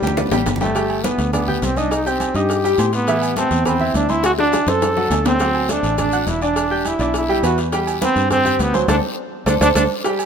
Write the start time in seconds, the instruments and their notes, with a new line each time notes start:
Already playing: trombone G3
0.02 fingered electric bass D2, upright piano G3 G4 G5, high bongo, high timbale, short guiro, maracas
0.07 low conga
0.17 upright piano B3 B4 D5, high bongo, low conga, high timbale, long guiro, maracas
0.27 low conga
0.31 fingered electric bass A1, upright piano G3 G4 G5, high bongo, low timbale, maracas
0.46 fingered electric bass G1, high bongo, low conga, low timbale, short guiro, maracas
0.56 low conga
0.60 upright piano G3 G4 G5, trombone A3, low bongo, low timbale, short guiro, maracas
0.66 low conga
0.75 upright piano G3 G4 G5, cowbell, high conga, low agogo, long guiro, maracas
0.90 high conga, low agogo
1.04 upright piano B3 B4 B5, trombone B3, cowbell, high conga, low agogo, short guiro, maracas
1.18 fingered electric bass D2, cowbell, short guiro, maracas
1.33 trombone B3, upright piano D4 D5 D6, cowbell, high conga, low conga, low agogo, long guiro, maracas
1.48 upright piano G4 G5 G6, high conga, low conga
1.62 fingered electric bass C2, trombone C4, cowbell, high conga, low timbale, low agogo, short guiro, maracas
1.76 trombone D4, upright piano D#4 D#5 D#6, high conga, low agogo, short guiro, maracas
1.91 trombone D#4, cowbell, high conga, low agogo, long guiro, maracas
2.05 trombone C4, upright piano G4 G5 G6, high conga, maracas
2.20 cowbell, high conga, low agogo, short guiro, maracas
2.34 fingered electric bass G2, upright piano D#4 D#5 D#6, trombone G4, cowbell, high conga, short guiro, maracas
2.49 cowbell, high conga, low agogo, long guiro, maracas
2.64 upright piano G3 G4 G5, high conga, maracas
2.78 fingered electric bass A2, upright piano C4 C5 C6, cowbell, high conga, low timbale, low agogo, short guiro, maracas
2.93 trombone B3, cowbell, high conga, short guiro, maracas
3.07 upright piano E3 E4 E5, cowbell, high conga, low agogo, long guiro, maracas
3.22 high conga, low agogo, maracas
3.36 upright piano A3 A4 A5, trombone C4, cowbell, high conga, low agogo, short guiro, maracas
3.51 fingered electric bass E2, cowbell, short guiro, maracas
3.65 upright piano B3 B4 B5, trombone C4, cowbell, high conga, low conga, low agogo, long guiro, maracas
3.80 upright piano E4 E5 E6, high conga, low conga
3.94 fingered electric bass D2, trombone D4, cowbell, high conga, low timbale, low agogo, short guiro, maracas
4.09 upright piano C4 C5 C6, trombone E4, high conga, low agogo, short guiro, maracas
4.23 trombone F#4, cowbell, high bongo, high conga, low agogo, long guiro, maracas
4.38 trombone D4, upright piano F#4 F#5 F#6, high bongo, high conga
4.52 cowbell, high bongo, high conga, low agogo, short guiro, maracas
4.67 fingered electric bass F#2, upright piano C4 C5 C6, trombone A4, cowbell, low bongo, high conga, short guiro, maracas
4.81 cowbell, low bongo, high conga, high timbale, low agogo, long guiro, maracas
4.97 upright piano F#3 F#4 F#5, low bongo, high conga
5.10 fingered electric bass D2, upright piano A3 A4 A5, cowbell, low bongo, low timbale, low agogo, short guiro, maracas
5.25 trombone C4, cowbell, low bongo, low timbale, short guiro, maracas
5.39 upright piano F#3 F#4 F#5, cowbell, high conga, low agogo, long guiro, maracas
5.54 high conga, low agogo
5.69 upright piano A3 A4 A5, trombone D4, cowbell, high conga, low agogo, short guiro, maracas
5.83 fingered electric bass A1, cowbell, short guiro, maracas
5.98 upright piano D4 D5 D6, trombone D4, cowbell, high conga, low conga, low agogo, long guiro, maracas
6.12 upright piano F#4 F#5 F#6, maracas
6.27 fingered electric bass E1, trombone E4, cowbell, high conga, low agogo, short guiro, maracas
6.41 upright piano D4 D5 D6, trombone D4, low agogo, short guiro, maracas
6.56 cowbell, high conga, low agogo, long guiro, maracas
6.71 upright piano G4 G5 G6, high conga
6.85 trombone E4, cowbell, high conga, low agogo, short guiro, maracas
6.99 fingered electric bass B1, upright piano D4 D5 D6, cowbell, high conga, short guiro, maracas
7.14 trombone E4, cowbell, high conga, low agogo, long guiro, maracas
7.29 upright piano G3 G4 G5, high conga
7.43 fingered electric bass E2, upright piano B3 B4 B5, trombone F#4, cowbell, low agogo, short guiro, maracas
7.58 cowbell, short guiro, maracas
7.72 upright piano G3 G4 G5, cowbell, high conga, low agogo, long guiro, maracas
7.87 high conga, low agogo, maracas
8.01 upright piano B3 B4 B5, trombone C4, cowbell, high conga, low agogo, short guiro, maracas
8.16 fingered electric bass G2, cowbell, short guiro, maracas
8.30 upright piano C4 C5 C6, trombone C4, cowbell, high conga, low conga, low agogo, long guiro, maracas
8.45 upright piano G4 G5 G6, high conga, low conga, maracas
8.59 fingered electric bass D2, trombone B3, cowbell, high conga, low timbale, low agogo, short guiro, maracas
8.74 trombone F#3, upright piano C4 C5 C6, high conga, low agogo, short guiro, maracas
8.88 fingered electric bass D2, trombone D4, upright piano A4 C5 D5, cowbell, high conga, high timbale, long guiro, maracas
9.46 fingered electric bass D2, trombone D4, upright piano A4 C5 D5, cowbell, high conga, high timbale, long guiro, maracas
9.61 fingered electric bass D2, trombone D4, upright piano A4 C5 D5, cowbell, high conga, high timbale, long guiro, maracas
9.75 fingered electric bass D2, trombone D4, upright piano A4 C5 D5, cowbell, high conga, high timbale, long guiro, maracas
10.04 upright piano G3 G4 G5, cowbell, high conga, low agogo, maracas
10.19 high conga, low agogo, maracas